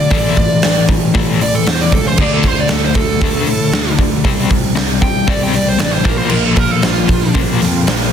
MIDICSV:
0, 0, Header, 1, 6, 480
1, 0, Start_track
1, 0, Key_signature, -1, "minor"
1, 0, Tempo, 517241
1, 100, Time_signature, 4, 2, 24, 8
1, 7541, End_track
2, 0, Start_track
2, 0, Title_t, "Lead electric guitar"
2, 0, Program_c, 0, 29
2, 0, Note_on_c, 0, 74, 85
2, 782, Note_off_c, 0, 74, 0
2, 1322, Note_on_c, 0, 74, 92
2, 1428, Note_off_c, 0, 74, 0
2, 1433, Note_on_c, 0, 69, 89
2, 1544, Note_off_c, 0, 69, 0
2, 1574, Note_on_c, 0, 72, 91
2, 1682, Note_off_c, 0, 72, 0
2, 1682, Note_on_c, 0, 74, 76
2, 1789, Note_off_c, 0, 74, 0
2, 1801, Note_on_c, 0, 69, 80
2, 1920, Note_off_c, 0, 69, 0
2, 1920, Note_on_c, 0, 72, 85
2, 2050, Note_off_c, 0, 72, 0
2, 2050, Note_on_c, 0, 74, 92
2, 2153, Note_off_c, 0, 74, 0
2, 2164, Note_on_c, 0, 69, 86
2, 2292, Note_off_c, 0, 69, 0
2, 2292, Note_on_c, 0, 72, 81
2, 2394, Note_off_c, 0, 72, 0
2, 2415, Note_on_c, 0, 74, 81
2, 2514, Note_on_c, 0, 69, 88
2, 2515, Note_off_c, 0, 74, 0
2, 2625, Note_off_c, 0, 69, 0
2, 2650, Note_on_c, 0, 72, 89
2, 2741, Note_off_c, 0, 72, 0
2, 2744, Note_on_c, 0, 69, 93
2, 3675, Note_off_c, 0, 69, 0
2, 4658, Note_on_c, 0, 79, 109
2, 4893, Note_off_c, 0, 79, 0
2, 4911, Note_on_c, 0, 74, 81
2, 5023, Note_off_c, 0, 74, 0
2, 5042, Note_on_c, 0, 79, 87
2, 5149, Note_off_c, 0, 79, 0
2, 5152, Note_on_c, 0, 74, 81
2, 5276, Note_off_c, 0, 74, 0
2, 5276, Note_on_c, 0, 72, 86
2, 5380, Note_off_c, 0, 72, 0
2, 5384, Note_on_c, 0, 74, 89
2, 5487, Note_on_c, 0, 72, 88
2, 5500, Note_off_c, 0, 74, 0
2, 5640, Note_off_c, 0, 72, 0
2, 5640, Note_on_c, 0, 70, 73
2, 5727, Note_off_c, 0, 70, 0
2, 5727, Note_on_c, 0, 72, 74
2, 5846, Note_off_c, 0, 72, 0
2, 5849, Note_on_c, 0, 70, 92
2, 5972, Note_off_c, 0, 70, 0
2, 5993, Note_on_c, 0, 69, 85
2, 6106, Note_off_c, 0, 69, 0
2, 6106, Note_on_c, 0, 70, 78
2, 6228, Note_off_c, 0, 70, 0
2, 6228, Note_on_c, 0, 69, 87
2, 6341, Note_off_c, 0, 69, 0
2, 6361, Note_on_c, 0, 65, 91
2, 6817, Note_off_c, 0, 65, 0
2, 7541, End_track
3, 0, Start_track
3, 0, Title_t, "Tonewheel organ"
3, 0, Program_c, 1, 16
3, 5860, Note_on_c, 1, 65, 52
3, 5860, Note_on_c, 1, 72, 67
3, 5868, Note_on_c, 1, 58, 62
3, 7541, Note_off_c, 1, 58, 0
3, 7541, Note_off_c, 1, 65, 0
3, 7541, Note_off_c, 1, 72, 0
3, 7541, End_track
4, 0, Start_track
4, 0, Title_t, "Overdriven electric guitar"
4, 0, Program_c, 2, 29
4, 99, Note_on_c, 2, 45, 81
4, 106, Note_on_c, 2, 52, 90
4, 114, Note_on_c, 2, 57, 104
4, 325, Note_off_c, 2, 45, 0
4, 329, Note_off_c, 2, 52, 0
4, 333, Note_off_c, 2, 57, 0
4, 363, Note_on_c, 2, 45, 66
4, 364, Note_on_c, 2, 52, 80
4, 568, Note_off_c, 2, 45, 0
4, 568, Note_off_c, 2, 52, 0
4, 590, Note_on_c, 2, 45, 72
4, 600, Note_on_c, 2, 52, 82
4, 801, Note_off_c, 2, 45, 0
4, 807, Note_off_c, 2, 52, 0
4, 830, Note_on_c, 2, 45, 76
4, 836, Note_on_c, 2, 52, 73
4, 1042, Note_off_c, 2, 45, 0
4, 1045, Note_off_c, 2, 52, 0
4, 1058, Note_on_c, 2, 45, 88
4, 1065, Note_on_c, 2, 52, 90
4, 1070, Note_on_c, 2, 57, 87
4, 1285, Note_off_c, 2, 45, 0
4, 1289, Note_off_c, 2, 52, 0
4, 1291, Note_off_c, 2, 57, 0
4, 1308, Note_on_c, 2, 45, 77
4, 1319, Note_on_c, 2, 52, 84
4, 1521, Note_off_c, 2, 45, 0
4, 1526, Note_off_c, 2, 52, 0
4, 1547, Note_on_c, 2, 45, 88
4, 1553, Note_on_c, 2, 52, 88
4, 1760, Note_off_c, 2, 45, 0
4, 1764, Note_off_c, 2, 52, 0
4, 1799, Note_on_c, 2, 45, 62
4, 1803, Note_on_c, 2, 52, 71
4, 2006, Note_off_c, 2, 45, 0
4, 2008, Note_off_c, 2, 52, 0
4, 2045, Note_on_c, 2, 50, 92
4, 2054, Note_on_c, 2, 57, 96
4, 2056, Note_on_c, 2, 62, 99
4, 2259, Note_off_c, 2, 50, 0
4, 2264, Note_off_c, 2, 57, 0
4, 2265, Note_off_c, 2, 62, 0
4, 2285, Note_on_c, 2, 50, 66
4, 2288, Note_on_c, 2, 57, 80
4, 2489, Note_off_c, 2, 50, 0
4, 2491, Note_off_c, 2, 57, 0
4, 2522, Note_on_c, 2, 57, 86
4, 2526, Note_on_c, 2, 50, 69
4, 2728, Note_off_c, 2, 57, 0
4, 2730, Note_off_c, 2, 50, 0
4, 2749, Note_on_c, 2, 50, 70
4, 2760, Note_on_c, 2, 57, 82
4, 2962, Note_off_c, 2, 50, 0
4, 2967, Note_off_c, 2, 57, 0
4, 2995, Note_on_c, 2, 50, 85
4, 3001, Note_on_c, 2, 57, 88
4, 3005, Note_on_c, 2, 62, 93
4, 3215, Note_off_c, 2, 50, 0
4, 3217, Note_off_c, 2, 57, 0
4, 3219, Note_off_c, 2, 62, 0
4, 3235, Note_on_c, 2, 50, 68
4, 3241, Note_on_c, 2, 57, 79
4, 3445, Note_off_c, 2, 50, 0
4, 3448, Note_off_c, 2, 57, 0
4, 3467, Note_on_c, 2, 50, 81
4, 3475, Note_on_c, 2, 57, 86
4, 3681, Note_off_c, 2, 50, 0
4, 3684, Note_off_c, 2, 57, 0
4, 3706, Note_on_c, 2, 50, 72
4, 3709, Note_on_c, 2, 57, 78
4, 3920, Note_off_c, 2, 50, 0
4, 3922, Note_off_c, 2, 57, 0
4, 3937, Note_on_c, 2, 48, 81
4, 3943, Note_on_c, 2, 55, 103
4, 3949, Note_on_c, 2, 60, 94
4, 4165, Note_off_c, 2, 48, 0
4, 4168, Note_off_c, 2, 55, 0
4, 4172, Note_off_c, 2, 60, 0
4, 4180, Note_on_c, 2, 48, 69
4, 4182, Note_on_c, 2, 55, 87
4, 4397, Note_off_c, 2, 48, 0
4, 4398, Note_off_c, 2, 55, 0
4, 4411, Note_on_c, 2, 48, 79
4, 4414, Note_on_c, 2, 55, 83
4, 4633, Note_off_c, 2, 48, 0
4, 4634, Note_off_c, 2, 55, 0
4, 4659, Note_on_c, 2, 48, 76
4, 4664, Note_on_c, 2, 55, 79
4, 4877, Note_off_c, 2, 48, 0
4, 4879, Note_off_c, 2, 55, 0
4, 4893, Note_on_c, 2, 48, 79
4, 4904, Note_on_c, 2, 55, 83
4, 4911, Note_on_c, 2, 60, 91
4, 5123, Note_off_c, 2, 48, 0
4, 5129, Note_off_c, 2, 55, 0
4, 5132, Note_off_c, 2, 60, 0
4, 5141, Note_on_c, 2, 48, 72
4, 5145, Note_on_c, 2, 55, 78
4, 5358, Note_off_c, 2, 48, 0
4, 5360, Note_off_c, 2, 55, 0
4, 5368, Note_on_c, 2, 48, 80
4, 5371, Note_on_c, 2, 55, 92
4, 5591, Note_off_c, 2, 48, 0
4, 5593, Note_off_c, 2, 55, 0
4, 5605, Note_on_c, 2, 46, 78
4, 5610, Note_on_c, 2, 58, 91
4, 5611, Note_on_c, 2, 53, 96
4, 5832, Note_off_c, 2, 46, 0
4, 5833, Note_off_c, 2, 53, 0
4, 5842, Note_off_c, 2, 58, 0
4, 5843, Note_on_c, 2, 46, 87
4, 5844, Note_on_c, 2, 53, 100
4, 5853, Note_on_c, 2, 58, 94
4, 6078, Note_off_c, 2, 46, 0
4, 6079, Note_off_c, 2, 53, 0
4, 6083, Note_off_c, 2, 58, 0
4, 6096, Note_on_c, 2, 46, 75
4, 6097, Note_on_c, 2, 53, 75
4, 6315, Note_off_c, 2, 46, 0
4, 6315, Note_off_c, 2, 53, 0
4, 6334, Note_on_c, 2, 46, 76
4, 6337, Note_on_c, 2, 53, 85
4, 6554, Note_off_c, 2, 46, 0
4, 6555, Note_off_c, 2, 53, 0
4, 6565, Note_on_c, 2, 46, 81
4, 6571, Note_on_c, 2, 53, 77
4, 6789, Note_off_c, 2, 46, 0
4, 6792, Note_off_c, 2, 53, 0
4, 6816, Note_on_c, 2, 46, 83
4, 6820, Note_on_c, 2, 53, 87
4, 6829, Note_on_c, 2, 58, 98
4, 7044, Note_off_c, 2, 46, 0
4, 7046, Note_off_c, 2, 53, 0
4, 7051, Note_off_c, 2, 58, 0
4, 7064, Note_on_c, 2, 46, 75
4, 7071, Note_on_c, 2, 53, 77
4, 7279, Note_off_c, 2, 46, 0
4, 7282, Note_off_c, 2, 53, 0
4, 7306, Note_on_c, 2, 46, 86
4, 7310, Note_on_c, 2, 53, 93
4, 7519, Note_off_c, 2, 46, 0
4, 7521, Note_off_c, 2, 53, 0
4, 7541, End_track
5, 0, Start_track
5, 0, Title_t, "Picked electric bass"
5, 0, Program_c, 3, 34
5, 103, Note_on_c, 3, 33, 92
5, 318, Note_off_c, 3, 33, 0
5, 348, Note_on_c, 3, 33, 87
5, 561, Note_off_c, 3, 33, 0
5, 597, Note_on_c, 3, 33, 86
5, 806, Note_off_c, 3, 33, 0
5, 826, Note_on_c, 3, 33, 80
5, 1040, Note_off_c, 3, 33, 0
5, 1067, Note_on_c, 3, 33, 84
5, 1281, Note_off_c, 3, 33, 0
5, 1312, Note_on_c, 3, 33, 75
5, 1524, Note_off_c, 3, 33, 0
5, 1550, Note_on_c, 3, 40, 88
5, 1763, Note_off_c, 3, 40, 0
5, 1785, Note_on_c, 3, 37, 86
5, 2000, Note_off_c, 3, 37, 0
5, 2029, Note_on_c, 3, 38, 93
5, 2242, Note_off_c, 3, 38, 0
5, 2266, Note_on_c, 3, 38, 83
5, 2481, Note_off_c, 3, 38, 0
5, 2504, Note_on_c, 3, 38, 88
5, 2720, Note_off_c, 3, 38, 0
5, 2742, Note_on_c, 3, 38, 84
5, 2959, Note_off_c, 3, 38, 0
5, 2982, Note_on_c, 3, 38, 82
5, 3199, Note_off_c, 3, 38, 0
5, 3220, Note_on_c, 3, 45, 82
5, 3438, Note_off_c, 3, 45, 0
5, 3455, Note_on_c, 3, 38, 90
5, 3675, Note_off_c, 3, 38, 0
5, 3704, Note_on_c, 3, 38, 85
5, 3920, Note_off_c, 3, 38, 0
5, 3942, Note_on_c, 3, 36, 88
5, 4159, Note_off_c, 3, 36, 0
5, 4186, Note_on_c, 3, 36, 83
5, 4401, Note_off_c, 3, 36, 0
5, 4410, Note_on_c, 3, 36, 80
5, 4632, Note_off_c, 3, 36, 0
5, 4657, Note_on_c, 3, 36, 78
5, 4876, Note_off_c, 3, 36, 0
5, 4896, Note_on_c, 3, 36, 78
5, 5116, Note_off_c, 3, 36, 0
5, 5138, Note_on_c, 3, 36, 82
5, 5357, Note_off_c, 3, 36, 0
5, 5378, Note_on_c, 3, 33, 93
5, 5596, Note_off_c, 3, 33, 0
5, 5616, Note_on_c, 3, 34, 78
5, 5835, Note_off_c, 3, 34, 0
5, 5868, Note_on_c, 3, 34, 87
5, 6082, Note_off_c, 3, 34, 0
5, 6097, Note_on_c, 3, 34, 84
5, 6316, Note_off_c, 3, 34, 0
5, 6354, Note_on_c, 3, 34, 86
5, 6565, Note_off_c, 3, 34, 0
5, 6583, Note_on_c, 3, 34, 86
5, 6799, Note_off_c, 3, 34, 0
5, 6823, Note_on_c, 3, 34, 84
5, 7039, Note_off_c, 3, 34, 0
5, 7072, Note_on_c, 3, 41, 81
5, 7284, Note_off_c, 3, 41, 0
5, 7308, Note_on_c, 3, 34, 94
5, 7521, Note_off_c, 3, 34, 0
5, 7541, End_track
6, 0, Start_track
6, 0, Title_t, "Drums"
6, 98, Note_on_c, 9, 46, 81
6, 104, Note_on_c, 9, 36, 114
6, 191, Note_off_c, 9, 46, 0
6, 197, Note_off_c, 9, 36, 0
6, 345, Note_on_c, 9, 36, 81
6, 347, Note_on_c, 9, 46, 56
6, 438, Note_off_c, 9, 36, 0
6, 439, Note_off_c, 9, 46, 0
6, 576, Note_on_c, 9, 46, 71
6, 585, Note_on_c, 9, 38, 98
6, 669, Note_off_c, 9, 46, 0
6, 678, Note_off_c, 9, 38, 0
6, 814, Note_on_c, 9, 46, 63
6, 823, Note_on_c, 9, 36, 88
6, 906, Note_off_c, 9, 46, 0
6, 916, Note_off_c, 9, 36, 0
6, 1063, Note_on_c, 9, 46, 79
6, 1065, Note_on_c, 9, 36, 105
6, 1156, Note_off_c, 9, 46, 0
6, 1158, Note_off_c, 9, 36, 0
6, 1310, Note_on_c, 9, 46, 64
6, 1403, Note_off_c, 9, 46, 0
6, 1544, Note_on_c, 9, 46, 89
6, 1554, Note_on_c, 9, 38, 109
6, 1637, Note_off_c, 9, 46, 0
6, 1647, Note_off_c, 9, 38, 0
6, 1782, Note_on_c, 9, 46, 64
6, 1785, Note_on_c, 9, 36, 83
6, 1875, Note_off_c, 9, 46, 0
6, 1878, Note_off_c, 9, 36, 0
6, 2019, Note_on_c, 9, 49, 102
6, 2025, Note_on_c, 9, 36, 111
6, 2112, Note_off_c, 9, 49, 0
6, 2117, Note_off_c, 9, 36, 0
6, 2257, Note_on_c, 9, 46, 59
6, 2263, Note_on_c, 9, 36, 82
6, 2349, Note_off_c, 9, 46, 0
6, 2356, Note_off_c, 9, 36, 0
6, 2489, Note_on_c, 9, 46, 82
6, 2498, Note_on_c, 9, 38, 107
6, 2581, Note_off_c, 9, 46, 0
6, 2591, Note_off_c, 9, 38, 0
6, 2731, Note_on_c, 9, 46, 63
6, 2740, Note_on_c, 9, 36, 88
6, 2824, Note_off_c, 9, 46, 0
6, 2833, Note_off_c, 9, 36, 0
6, 2979, Note_on_c, 9, 46, 80
6, 2984, Note_on_c, 9, 36, 106
6, 3071, Note_off_c, 9, 46, 0
6, 3076, Note_off_c, 9, 36, 0
6, 3216, Note_on_c, 9, 46, 62
6, 3309, Note_off_c, 9, 46, 0
6, 3466, Note_on_c, 9, 38, 117
6, 3559, Note_off_c, 9, 38, 0
6, 3582, Note_on_c, 9, 38, 35
6, 3675, Note_off_c, 9, 38, 0
6, 3699, Note_on_c, 9, 36, 82
6, 3700, Note_on_c, 9, 46, 52
6, 3792, Note_off_c, 9, 36, 0
6, 3793, Note_off_c, 9, 46, 0
6, 3941, Note_on_c, 9, 36, 114
6, 3941, Note_on_c, 9, 46, 83
6, 4034, Note_off_c, 9, 36, 0
6, 4034, Note_off_c, 9, 46, 0
6, 4182, Note_on_c, 9, 36, 81
6, 4184, Note_on_c, 9, 46, 57
6, 4275, Note_off_c, 9, 36, 0
6, 4277, Note_off_c, 9, 46, 0
6, 4419, Note_on_c, 9, 46, 76
6, 4428, Note_on_c, 9, 38, 109
6, 4512, Note_off_c, 9, 46, 0
6, 4521, Note_off_c, 9, 38, 0
6, 4658, Note_on_c, 9, 36, 91
6, 4664, Note_on_c, 9, 46, 60
6, 4751, Note_off_c, 9, 36, 0
6, 4757, Note_off_c, 9, 46, 0
6, 4897, Note_on_c, 9, 36, 107
6, 4898, Note_on_c, 9, 46, 77
6, 4990, Note_off_c, 9, 36, 0
6, 4991, Note_off_c, 9, 46, 0
6, 5136, Note_on_c, 9, 46, 60
6, 5146, Note_on_c, 9, 38, 31
6, 5229, Note_off_c, 9, 46, 0
6, 5238, Note_off_c, 9, 38, 0
6, 5375, Note_on_c, 9, 46, 89
6, 5385, Note_on_c, 9, 38, 123
6, 5468, Note_off_c, 9, 46, 0
6, 5477, Note_off_c, 9, 38, 0
6, 5508, Note_on_c, 9, 38, 32
6, 5600, Note_off_c, 9, 38, 0
6, 5613, Note_on_c, 9, 46, 57
6, 5616, Note_on_c, 9, 36, 96
6, 5706, Note_off_c, 9, 46, 0
6, 5709, Note_off_c, 9, 36, 0
6, 5843, Note_on_c, 9, 49, 99
6, 5935, Note_off_c, 9, 49, 0
6, 6089, Note_on_c, 9, 46, 58
6, 6096, Note_on_c, 9, 36, 86
6, 6181, Note_off_c, 9, 46, 0
6, 6189, Note_off_c, 9, 36, 0
6, 6331, Note_on_c, 9, 46, 75
6, 6340, Note_on_c, 9, 38, 105
6, 6424, Note_off_c, 9, 46, 0
6, 6433, Note_off_c, 9, 38, 0
6, 6576, Note_on_c, 9, 46, 62
6, 6580, Note_on_c, 9, 36, 93
6, 6668, Note_off_c, 9, 46, 0
6, 6673, Note_off_c, 9, 36, 0
6, 6815, Note_on_c, 9, 46, 76
6, 6821, Note_on_c, 9, 36, 110
6, 6908, Note_off_c, 9, 46, 0
6, 6913, Note_off_c, 9, 36, 0
6, 7069, Note_on_c, 9, 46, 66
6, 7078, Note_on_c, 9, 38, 31
6, 7162, Note_off_c, 9, 46, 0
6, 7171, Note_off_c, 9, 38, 0
6, 7304, Note_on_c, 9, 46, 84
6, 7313, Note_on_c, 9, 38, 120
6, 7396, Note_off_c, 9, 46, 0
6, 7406, Note_off_c, 9, 38, 0
6, 7444, Note_on_c, 9, 38, 34
6, 7536, Note_off_c, 9, 38, 0
6, 7541, End_track
0, 0, End_of_file